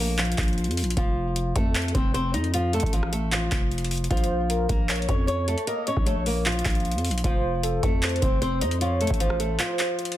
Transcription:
Already playing: 808-style bass A#1
0.00 nylon-string guitar A#3 A#4
0.18 nylon-string guitar F3 F4, clap, closed hi-hat
0.25 closed hi-hat
0.32 closed hi-hat
0.38 808-style bass A#1, kick, clap, closed hi-hat
0.43 closed hi-hat
0.48 closed hi-hat
0.53 closed hi-hat
0.58 closed hi-hat
0.64 808-style bass F2, closed hi-hat
0.71 closed hi-hat
0.77 closed hi-hat, open hi-hat
0.82 808-style bass A#1, closed hi-hat
0.90 closed hi-hat
0.97 808-style bass F1, nylon-string guitar F3 F4, kick, closed hi-hat
1.36 closed hi-hat
1.56 808-style bass F2, nylon-string guitar A3 A4, kick, closed hi-hat
1.75 clap, closed hi-hat
1.82 closed hi-hat
1.88 closed hi-hat
1.94 808-style bass F1, nylon-string guitar C4 C5, kick, closed hi-hat
2.14 nylon-string guitar C4 C5, closed hi-hat
2.34 808-style bass F2, nylon-string guitar D#4 D#5, closed hi-hat
2.44 closed hi-hat
2.54 nylon-string guitar F3 F4, closed hi-hat
2.73 nylon-string guitar A3 A4, closed hi-hat
2.80 808-style bass A1, kick, closed hi-hat
2.86 closed hi-hat
2.93 nylon-string guitar F3 F4, closed hi-hat
3.03 cross-stick
3.12 nylon-string guitar A3 A4, closed hi-hat
3.32 nylon-string guitar F3 F4, clap, closed hi-hat
3.52 808-style bass F1, kick, clap, closed hi-hat
3.71 closed hi-hat
3.78 closed hi-hat
3.85 closed hi-hat
3.91 closed hi-hat, open hi-hat
3.98 closed hi-hat
4.04 closed hi-hat
4.10 808-style bass A#1, nylon-string guitar F3 F4, soft synth lead C5, kick, closed hi-hat
4.17 closed hi-hat
4.24 closed hi-hat
4.50 soft synth lead A#4, closed hi-hat
4.69 808-style bass A#1, nylon-string guitar A#3 A#4, kick, closed hi-hat
4.89 soft synth lead C#5, clap, closed hi-hat
4.96 closed hi-hat
5.02 closed hi-hat
5.08 808-style bass F2, nylon-string guitar C#4 C#5, kick, closed hi-hat
5.27 nylon-string guitar C#4 C#5, closed hi-hat
5.48 nylon-string guitar A3 A4, closed hi-hat
5.58 closed hi-hat
5.67 nylon-string guitar A#3 A#4, soft synth lead D#5, closed hi-hat
5.87 nylon-string guitar C#4 C#5, closed hi-hat
5.97 808-style bass A#1, kick
6.06 nylon-string guitar A3 A4, soft synth lead C#5, closed hi-hat
6.26 nylon-string guitar A#3 A#4, open hi-hat
6.46 nylon-string guitar F3 F4, clap, closed hi-hat
6.52 closed hi-hat
6.59 closed hi-hat
6.65 808-style bass A#1, kick, clap, closed hi-hat
6.70 closed hi-hat
6.75 closed hi-hat
6.80 closed hi-hat
6.85 closed hi-hat
6.92 808-style bass F2, closed hi-hat
6.98 closed hi-hat
7.05 closed hi-hat, open hi-hat
7.09 808-style bass A#1, closed hi-hat
7.18 closed hi-hat
7.24 808-style bass F1, nylon-string guitar F3 F4, soft synth lead C5, kick, closed hi-hat
7.63 soft synth lead A4, closed hi-hat
7.83 808-style bass F2, nylon-string guitar A3 A4, kick, closed hi-hat
8.03 soft synth lead C5, clap, closed hi-hat
8.09 closed hi-hat
8.16 closed hi-hat
8.22 808-style bass F1, nylon-string guitar C4 C5, kick, closed hi-hat
8.42 nylon-string guitar C4 C5, closed hi-hat
8.61 808-style bass F2, nylon-string guitar D#4 D#5, closed hi-hat
8.71 closed hi-hat
8.81 nylon-string guitar F3 F4, soft synth lead C#5, closed hi-hat
9.01 nylon-string guitar A3 A4, closed hi-hat
9.07 808-style bass A1, kick, closed hi-hat
9.14 closed hi-hat
9.20 nylon-string guitar F3 F4, soft synth lead C5, closed hi-hat
9.30 cross-stick
9.40 nylon-string guitar A3 A4, closed hi-hat
9.59 nylon-string guitar F3 F4, soft synth lead C5, clap, closed hi-hat
9.79 clap, closed hi-hat
9.99 closed hi-hat
10.05 closed hi-hat
10.12 closed hi-hat

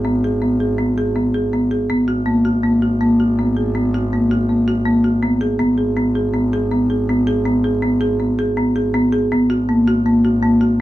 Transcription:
Already playing: double bass G#1
0.05 marimba B3
0.24 marimba G#4
0.42 marimba B3
0.60 marimba G#4
0.78 marimba B3
0.98 marimba G#4
1.16 marimba B3
1.34 marimba G#4
1.53 marimba B3
1.71 marimba G#4
1.90 double bass G#1, marimba B3
2.08 marimba F#4
2.26 marimba A#3
2.45 marimba F#4
2.63 marimba A#3
2.82 marimba F#4
3.01 marimba A#3
3.20 marimba F#4
3.39 marimba B3
3.57 marimba G#4
3.75 marimba B3
3.94 marimba F#4
4.13 marimba A#3
4.31 marimba F#4
4.49 marimba A#3
4.68 marimba F#4
4.86 marimba A#3
5.04 marimba F#4
5.23 marimba B3
5.41 marimba G#4
5.59 double bass G#1, marimba B3
5.78 marimba G#4
5.97 marimba B3
6.15 marimba G#4
6.34 marimba B3
6.53 marimba G#4
6.71 marimba B3
6.90 marimba G#4
7.09 marimba B3
7.27 marimba G#4
7.45 marimba B3
7.64 marimba G#4
7.82 marimba B3
8.01 marimba G#4
8.20 marimba B3
8.39 marimba G#4
8.57 marimba B3
8.76 marimba G#4
8.94 marimba B3
9.12 marimba G#4
9.32 double bass G#1, marimba B3
9.50 marimba F#4
9.69 marimba A#3
9.88 marimba F#4
10.06 marimba A#3
10.25 marimba F#4
10.43 marimba A#3
10.61 marimba F#4

